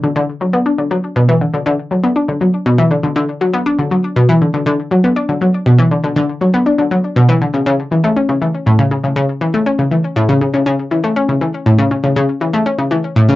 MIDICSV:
0, 0, Header, 1, 2, 480
1, 0, Start_track
1, 0, Tempo, 500000
1, 1475, Time_signature, 4, 2, 24, 8
1, 12821, End_track
2, 0, Start_track
2, 0, Title_t, "Synth arpeggio sound"
2, 0, Program_c, 0, 84
2, 34, Note_on_c, 0, 50, 84
2, 121, Note_off_c, 0, 50, 0
2, 153, Note_on_c, 0, 50, 98
2, 240, Note_off_c, 0, 50, 0
2, 394, Note_on_c, 0, 54, 71
2, 481, Note_off_c, 0, 54, 0
2, 512, Note_on_c, 0, 59, 80
2, 600, Note_off_c, 0, 59, 0
2, 633, Note_on_c, 0, 62, 74
2, 748, Note_off_c, 0, 62, 0
2, 753, Note_on_c, 0, 50, 76
2, 840, Note_off_c, 0, 50, 0
2, 874, Note_on_c, 0, 54, 82
2, 926, Note_off_c, 0, 54, 0
2, 1115, Note_on_c, 0, 47, 100
2, 1229, Note_off_c, 0, 47, 0
2, 1235, Note_on_c, 0, 52, 102
2, 1349, Note_off_c, 0, 52, 0
2, 1356, Note_on_c, 0, 50, 74
2, 1407, Note_off_c, 0, 50, 0
2, 1475, Note_on_c, 0, 50, 82
2, 1561, Note_off_c, 0, 50, 0
2, 1594, Note_on_c, 0, 50, 99
2, 1681, Note_off_c, 0, 50, 0
2, 1834, Note_on_c, 0, 54, 71
2, 1921, Note_off_c, 0, 54, 0
2, 1954, Note_on_c, 0, 59, 82
2, 2041, Note_off_c, 0, 59, 0
2, 2072, Note_on_c, 0, 62, 74
2, 2187, Note_off_c, 0, 62, 0
2, 2193, Note_on_c, 0, 50, 77
2, 2280, Note_off_c, 0, 50, 0
2, 2312, Note_on_c, 0, 54, 72
2, 2365, Note_off_c, 0, 54, 0
2, 2553, Note_on_c, 0, 47, 100
2, 2668, Note_off_c, 0, 47, 0
2, 2671, Note_on_c, 0, 52, 102
2, 2787, Note_off_c, 0, 52, 0
2, 2791, Note_on_c, 0, 50, 80
2, 2845, Note_off_c, 0, 50, 0
2, 2912, Note_on_c, 0, 50, 81
2, 3000, Note_off_c, 0, 50, 0
2, 3032, Note_on_c, 0, 50, 100
2, 3120, Note_off_c, 0, 50, 0
2, 3274, Note_on_c, 0, 54, 82
2, 3360, Note_off_c, 0, 54, 0
2, 3393, Note_on_c, 0, 59, 81
2, 3480, Note_off_c, 0, 59, 0
2, 3513, Note_on_c, 0, 62, 80
2, 3628, Note_off_c, 0, 62, 0
2, 3634, Note_on_c, 0, 50, 76
2, 3721, Note_off_c, 0, 50, 0
2, 3754, Note_on_c, 0, 54, 73
2, 3806, Note_off_c, 0, 54, 0
2, 3994, Note_on_c, 0, 47, 97
2, 4108, Note_off_c, 0, 47, 0
2, 4116, Note_on_c, 0, 52, 103
2, 4229, Note_off_c, 0, 52, 0
2, 4236, Note_on_c, 0, 50, 73
2, 4287, Note_off_c, 0, 50, 0
2, 4356, Note_on_c, 0, 50, 78
2, 4441, Note_off_c, 0, 50, 0
2, 4474, Note_on_c, 0, 50, 102
2, 4561, Note_off_c, 0, 50, 0
2, 4715, Note_on_c, 0, 54, 79
2, 4801, Note_off_c, 0, 54, 0
2, 4837, Note_on_c, 0, 59, 77
2, 4922, Note_off_c, 0, 59, 0
2, 4955, Note_on_c, 0, 62, 79
2, 5069, Note_off_c, 0, 62, 0
2, 5075, Note_on_c, 0, 50, 75
2, 5161, Note_off_c, 0, 50, 0
2, 5195, Note_on_c, 0, 54, 79
2, 5247, Note_off_c, 0, 54, 0
2, 5434, Note_on_c, 0, 47, 100
2, 5548, Note_off_c, 0, 47, 0
2, 5554, Note_on_c, 0, 52, 98
2, 5668, Note_off_c, 0, 52, 0
2, 5675, Note_on_c, 0, 50, 72
2, 5727, Note_off_c, 0, 50, 0
2, 5795, Note_on_c, 0, 50, 84
2, 5881, Note_off_c, 0, 50, 0
2, 5914, Note_on_c, 0, 50, 104
2, 6000, Note_off_c, 0, 50, 0
2, 6154, Note_on_c, 0, 54, 77
2, 6241, Note_off_c, 0, 54, 0
2, 6276, Note_on_c, 0, 59, 77
2, 6361, Note_off_c, 0, 59, 0
2, 6395, Note_on_c, 0, 62, 77
2, 6509, Note_off_c, 0, 62, 0
2, 6514, Note_on_c, 0, 50, 73
2, 6601, Note_off_c, 0, 50, 0
2, 6636, Note_on_c, 0, 54, 78
2, 6687, Note_off_c, 0, 54, 0
2, 6876, Note_on_c, 0, 47, 103
2, 6989, Note_off_c, 0, 47, 0
2, 6996, Note_on_c, 0, 52, 104
2, 7109, Note_off_c, 0, 52, 0
2, 7117, Note_on_c, 0, 50, 80
2, 7168, Note_off_c, 0, 50, 0
2, 7235, Note_on_c, 0, 49, 79
2, 7321, Note_off_c, 0, 49, 0
2, 7356, Note_on_c, 0, 49, 101
2, 7442, Note_off_c, 0, 49, 0
2, 7597, Note_on_c, 0, 52, 74
2, 7682, Note_off_c, 0, 52, 0
2, 7717, Note_on_c, 0, 57, 83
2, 7802, Note_off_c, 0, 57, 0
2, 7836, Note_on_c, 0, 61, 74
2, 7949, Note_off_c, 0, 61, 0
2, 7956, Note_on_c, 0, 49, 81
2, 8042, Note_off_c, 0, 49, 0
2, 8077, Note_on_c, 0, 52, 76
2, 8128, Note_off_c, 0, 52, 0
2, 8316, Note_on_c, 0, 45, 102
2, 8429, Note_off_c, 0, 45, 0
2, 8435, Note_on_c, 0, 49, 97
2, 8544, Note_off_c, 0, 49, 0
2, 8555, Note_on_c, 0, 49, 78
2, 8607, Note_off_c, 0, 49, 0
2, 8675, Note_on_c, 0, 49, 78
2, 8761, Note_off_c, 0, 49, 0
2, 8795, Note_on_c, 0, 49, 100
2, 8881, Note_off_c, 0, 49, 0
2, 9035, Note_on_c, 0, 52, 82
2, 9121, Note_off_c, 0, 52, 0
2, 9156, Note_on_c, 0, 57, 78
2, 9242, Note_off_c, 0, 57, 0
2, 9275, Note_on_c, 0, 61, 78
2, 9389, Note_off_c, 0, 61, 0
2, 9395, Note_on_c, 0, 49, 76
2, 9481, Note_off_c, 0, 49, 0
2, 9514, Note_on_c, 0, 52, 73
2, 9566, Note_off_c, 0, 52, 0
2, 9754, Note_on_c, 0, 45, 102
2, 9868, Note_off_c, 0, 45, 0
2, 9876, Note_on_c, 0, 49, 103
2, 9985, Note_off_c, 0, 49, 0
2, 9996, Note_on_c, 0, 49, 75
2, 10047, Note_off_c, 0, 49, 0
2, 10115, Note_on_c, 0, 49, 85
2, 10201, Note_off_c, 0, 49, 0
2, 10234, Note_on_c, 0, 49, 101
2, 10321, Note_off_c, 0, 49, 0
2, 10475, Note_on_c, 0, 52, 76
2, 10561, Note_off_c, 0, 52, 0
2, 10596, Note_on_c, 0, 57, 80
2, 10682, Note_off_c, 0, 57, 0
2, 10716, Note_on_c, 0, 61, 80
2, 10829, Note_off_c, 0, 61, 0
2, 10836, Note_on_c, 0, 49, 80
2, 10922, Note_off_c, 0, 49, 0
2, 10956, Note_on_c, 0, 52, 77
2, 11007, Note_off_c, 0, 52, 0
2, 11195, Note_on_c, 0, 45, 100
2, 11309, Note_off_c, 0, 45, 0
2, 11314, Note_on_c, 0, 49, 100
2, 11422, Note_off_c, 0, 49, 0
2, 11434, Note_on_c, 0, 49, 76
2, 11486, Note_off_c, 0, 49, 0
2, 11555, Note_on_c, 0, 49, 88
2, 11641, Note_off_c, 0, 49, 0
2, 11675, Note_on_c, 0, 49, 101
2, 11761, Note_off_c, 0, 49, 0
2, 11915, Note_on_c, 0, 52, 77
2, 12001, Note_off_c, 0, 52, 0
2, 12033, Note_on_c, 0, 57, 85
2, 12120, Note_off_c, 0, 57, 0
2, 12153, Note_on_c, 0, 61, 76
2, 12268, Note_off_c, 0, 61, 0
2, 12272, Note_on_c, 0, 49, 79
2, 12360, Note_off_c, 0, 49, 0
2, 12392, Note_on_c, 0, 52, 83
2, 12445, Note_off_c, 0, 52, 0
2, 12633, Note_on_c, 0, 45, 105
2, 12748, Note_off_c, 0, 45, 0
2, 12753, Note_on_c, 0, 49, 110
2, 12821, Note_off_c, 0, 49, 0
2, 12821, End_track
0, 0, End_of_file